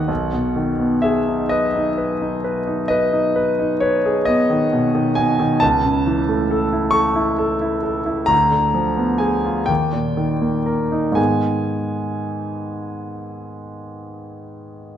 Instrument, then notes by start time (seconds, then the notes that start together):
grand piano
Already playing: D#2 D#3 B3 G#4 B4 D#5 F#5
0.08 B1
0.33 B2
0.56 D#3
0.80 B3
1.02 G#4 E5
1.28 D#4
1.49 B4 D#5
1.75 D#4
1.98 B4
2.22 D#4
2.44 B4
2.67 D#4
2.88 B4 D#5
3.13 D#4
3.36 B4
3.59 D#4
3.80 B4 C#5
4.06 G#4
4.25 B3 D#5
4.50 D#3
4.73 B2
4.95 D#3
5.15 B2 G#5
5.40 D#3
5.60 C#2 A5
5.85 C#3
6.07 E3
6.28 A3
6.51 A4
6.73 E4
6.91 A4 C#6
7.16 E4
7.38 A4
7.61 E4
7.83 A4
8.06 E4
8.26 D2 A#5
8.51 D3
8.74 F3
8.97 B3
9.18 G#4 G#5
9.44 F4
9.66 D#2 G5
9.93 A#2
10.17 D#3
10.41 A#3
10.66 A#4
10.92 D#4
11.12 G#2 D#3 B3 G#4 G#5